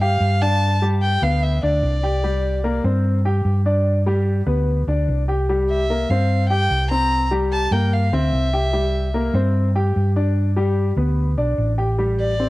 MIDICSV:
0, 0, Header, 1, 4, 480
1, 0, Start_track
1, 0, Tempo, 405954
1, 730, Time_signature, 4, 2, 24, 8
1, 14768, End_track
2, 0, Start_track
2, 0, Title_t, "Fiddle"
2, 0, Program_c, 0, 110
2, 9, Note_on_c, 0, 77, 98
2, 491, Note_on_c, 0, 81, 106
2, 509, Note_off_c, 0, 77, 0
2, 971, Note_off_c, 0, 81, 0
2, 1200, Note_on_c, 0, 79, 89
2, 1455, Note_on_c, 0, 77, 84
2, 1473, Note_off_c, 0, 79, 0
2, 1685, Note_on_c, 0, 76, 77
2, 1703, Note_off_c, 0, 77, 0
2, 1922, Note_off_c, 0, 76, 0
2, 1929, Note_on_c, 0, 74, 90
2, 3323, Note_off_c, 0, 74, 0
2, 6732, Note_on_c, 0, 76, 88
2, 7205, Note_on_c, 0, 77, 82
2, 7223, Note_off_c, 0, 76, 0
2, 7663, Note_off_c, 0, 77, 0
2, 7670, Note_on_c, 0, 79, 106
2, 8127, Note_off_c, 0, 79, 0
2, 8157, Note_on_c, 0, 82, 115
2, 8610, Note_off_c, 0, 82, 0
2, 8892, Note_on_c, 0, 81, 100
2, 9128, Note_on_c, 0, 79, 84
2, 9146, Note_off_c, 0, 81, 0
2, 9376, Note_on_c, 0, 77, 77
2, 9394, Note_off_c, 0, 79, 0
2, 9621, Note_on_c, 0, 76, 89
2, 9638, Note_off_c, 0, 77, 0
2, 11055, Note_off_c, 0, 76, 0
2, 14416, Note_on_c, 0, 74, 92
2, 14768, Note_off_c, 0, 74, 0
2, 14768, End_track
3, 0, Start_track
3, 0, Title_t, "Grand piano"
3, 0, Program_c, 1, 0
3, 15, Note_on_c, 1, 67, 65
3, 17, Note_on_c, 1, 79, 74
3, 407, Note_off_c, 1, 67, 0
3, 408, Note_off_c, 1, 79, 0
3, 493, Note_on_c, 1, 62, 69
3, 495, Note_on_c, 1, 74, 68
3, 886, Note_off_c, 1, 62, 0
3, 887, Note_off_c, 1, 74, 0
3, 968, Note_on_c, 1, 55, 76
3, 975, Note_on_c, 1, 67, 75
3, 1363, Note_off_c, 1, 55, 0
3, 1367, Note_off_c, 1, 67, 0
3, 1449, Note_on_c, 1, 59, 60
3, 1450, Note_on_c, 1, 71, 66
3, 1843, Note_off_c, 1, 59, 0
3, 1844, Note_off_c, 1, 71, 0
3, 1928, Note_on_c, 1, 62, 75
3, 1935, Note_on_c, 1, 74, 72
3, 2323, Note_off_c, 1, 62, 0
3, 2327, Note_off_c, 1, 74, 0
3, 2404, Note_on_c, 1, 67, 67
3, 2411, Note_on_c, 1, 79, 75
3, 2604, Note_off_c, 1, 67, 0
3, 2608, Note_off_c, 1, 79, 0
3, 2644, Note_on_c, 1, 55, 70
3, 2650, Note_on_c, 1, 67, 72
3, 3041, Note_off_c, 1, 55, 0
3, 3044, Note_off_c, 1, 67, 0
3, 3120, Note_on_c, 1, 58, 66
3, 3124, Note_on_c, 1, 70, 67
3, 3321, Note_off_c, 1, 58, 0
3, 3324, Note_off_c, 1, 70, 0
3, 3363, Note_on_c, 1, 60, 60
3, 3365, Note_on_c, 1, 72, 66
3, 3760, Note_off_c, 1, 60, 0
3, 3761, Note_off_c, 1, 72, 0
3, 3846, Note_on_c, 1, 67, 72
3, 3850, Note_on_c, 1, 79, 70
3, 4242, Note_off_c, 1, 67, 0
3, 4244, Note_off_c, 1, 79, 0
3, 4323, Note_on_c, 1, 62, 69
3, 4327, Note_on_c, 1, 74, 69
3, 4720, Note_off_c, 1, 62, 0
3, 4723, Note_off_c, 1, 74, 0
3, 4805, Note_on_c, 1, 55, 76
3, 4812, Note_on_c, 1, 67, 76
3, 5201, Note_off_c, 1, 55, 0
3, 5206, Note_off_c, 1, 67, 0
3, 5279, Note_on_c, 1, 59, 69
3, 5282, Note_on_c, 1, 71, 64
3, 5678, Note_off_c, 1, 59, 0
3, 5680, Note_off_c, 1, 71, 0
3, 5769, Note_on_c, 1, 62, 71
3, 5774, Note_on_c, 1, 74, 67
3, 6164, Note_off_c, 1, 62, 0
3, 6166, Note_off_c, 1, 74, 0
3, 6244, Note_on_c, 1, 67, 67
3, 6253, Note_on_c, 1, 79, 65
3, 6444, Note_off_c, 1, 67, 0
3, 6449, Note_off_c, 1, 79, 0
3, 6493, Note_on_c, 1, 55, 73
3, 6495, Note_on_c, 1, 67, 72
3, 6886, Note_off_c, 1, 55, 0
3, 6888, Note_off_c, 1, 67, 0
3, 6975, Note_on_c, 1, 58, 63
3, 6977, Note_on_c, 1, 70, 63
3, 7171, Note_off_c, 1, 58, 0
3, 7171, Note_off_c, 1, 70, 0
3, 7219, Note_on_c, 1, 60, 60
3, 7219, Note_on_c, 1, 72, 68
3, 7609, Note_off_c, 1, 60, 0
3, 7610, Note_off_c, 1, 72, 0
3, 7690, Note_on_c, 1, 67, 66
3, 7694, Note_on_c, 1, 79, 65
3, 8084, Note_off_c, 1, 67, 0
3, 8087, Note_off_c, 1, 79, 0
3, 8172, Note_on_c, 1, 60, 72
3, 8176, Note_on_c, 1, 72, 66
3, 8566, Note_off_c, 1, 60, 0
3, 8568, Note_off_c, 1, 72, 0
3, 8644, Note_on_c, 1, 55, 81
3, 8648, Note_on_c, 1, 67, 78
3, 9041, Note_off_c, 1, 55, 0
3, 9043, Note_off_c, 1, 67, 0
3, 9128, Note_on_c, 1, 58, 69
3, 9132, Note_on_c, 1, 70, 69
3, 9523, Note_off_c, 1, 58, 0
3, 9526, Note_off_c, 1, 70, 0
3, 9612, Note_on_c, 1, 72, 68
3, 9613, Note_on_c, 1, 60, 74
3, 10005, Note_off_c, 1, 72, 0
3, 10006, Note_off_c, 1, 60, 0
3, 10090, Note_on_c, 1, 67, 68
3, 10090, Note_on_c, 1, 79, 67
3, 10287, Note_off_c, 1, 67, 0
3, 10287, Note_off_c, 1, 79, 0
3, 10326, Note_on_c, 1, 55, 69
3, 10327, Note_on_c, 1, 67, 70
3, 10721, Note_off_c, 1, 55, 0
3, 10722, Note_off_c, 1, 67, 0
3, 10808, Note_on_c, 1, 58, 68
3, 10813, Note_on_c, 1, 70, 68
3, 11006, Note_off_c, 1, 58, 0
3, 11009, Note_off_c, 1, 70, 0
3, 11049, Note_on_c, 1, 60, 70
3, 11050, Note_on_c, 1, 72, 70
3, 11443, Note_off_c, 1, 60, 0
3, 11444, Note_off_c, 1, 72, 0
3, 11534, Note_on_c, 1, 67, 74
3, 11539, Note_on_c, 1, 79, 70
3, 11926, Note_off_c, 1, 67, 0
3, 11929, Note_off_c, 1, 79, 0
3, 12014, Note_on_c, 1, 62, 72
3, 12017, Note_on_c, 1, 74, 69
3, 12406, Note_off_c, 1, 62, 0
3, 12408, Note_off_c, 1, 74, 0
3, 12491, Note_on_c, 1, 55, 79
3, 12496, Note_on_c, 1, 67, 77
3, 12883, Note_off_c, 1, 55, 0
3, 12887, Note_off_c, 1, 67, 0
3, 12973, Note_on_c, 1, 59, 68
3, 12977, Note_on_c, 1, 71, 62
3, 13365, Note_off_c, 1, 59, 0
3, 13367, Note_off_c, 1, 71, 0
3, 13451, Note_on_c, 1, 62, 66
3, 13455, Note_on_c, 1, 74, 67
3, 13843, Note_off_c, 1, 62, 0
3, 13846, Note_off_c, 1, 74, 0
3, 13929, Note_on_c, 1, 67, 66
3, 13932, Note_on_c, 1, 79, 67
3, 14125, Note_off_c, 1, 67, 0
3, 14127, Note_off_c, 1, 79, 0
3, 14169, Note_on_c, 1, 55, 73
3, 14174, Note_on_c, 1, 67, 69
3, 14562, Note_off_c, 1, 55, 0
3, 14564, Note_off_c, 1, 67, 0
3, 14658, Note_on_c, 1, 60, 65
3, 14658, Note_on_c, 1, 72, 58
3, 14768, Note_off_c, 1, 60, 0
3, 14768, Note_off_c, 1, 72, 0
3, 14768, End_track
4, 0, Start_track
4, 0, Title_t, "Fingered electric bass"
4, 0, Program_c, 2, 33
4, 0, Note_on_c, 2, 43, 90
4, 201, Note_off_c, 2, 43, 0
4, 241, Note_on_c, 2, 43, 85
4, 1375, Note_off_c, 2, 43, 0
4, 1441, Note_on_c, 2, 38, 90
4, 1892, Note_off_c, 2, 38, 0
4, 1928, Note_on_c, 2, 38, 66
4, 2152, Note_off_c, 2, 38, 0
4, 2164, Note_on_c, 2, 36, 93
4, 3296, Note_off_c, 2, 36, 0
4, 3360, Note_on_c, 2, 43, 93
4, 4038, Note_off_c, 2, 43, 0
4, 4077, Note_on_c, 2, 43, 90
4, 5213, Note_off_c, 2, 43, 0
4, 5277, Note_on_c, 2, 38, 82
4, 5731, Note_off_c, 2, 38, 0
4, 5759, Note_on_c, 2, 38, 66
4, 5988, Note_off_c, 2, 38, 0
4, 6008, Note_on_c, 2, 36, 85
4, 7139, Note_off_c, 2, 36, 0
4, 7209, Note_on_c, 2, 43, 83
4, 7883, Note_off_c, 2, 43, 0
4, 7926, Note_on_c, 2, 36, 84
4, 9057, Note_off_c, 2, 36, 0
4, 9118, Note_on_c, 2, 43, 86
4, 9571, Note_off_c, 2, 43, 0
4, 9603, Note_on_c, 2, 38, 66
4, 9830, Note_off_c, 2, 38, 0
4, 9849, Note_on_c, 2, 36, 93
4, 10978, Note_off_c, 2, 36, 0
4, 11039, Note_on_c, 2, 43, 90
4, 11717, Note_off_c, 2, 43, 0
4, 11776, Note_on_c, 2, 43, 90
4, 12901, Note_off_c, 2, 43, 0
4, 12963, Note_on_c, 2, 38, 82
4, 13412, Note_off_c, 2, 38, 0
4, 13449, Note_on_c, 2, 35, 66
4, 13672, Note_off_c, 2, 35, 0
4, 13689, Note_on_c, 2, 33, 86
4, 14768, Note_off_c, 2, 33, 0
4, 14768, End_track
0, 0, End_of_file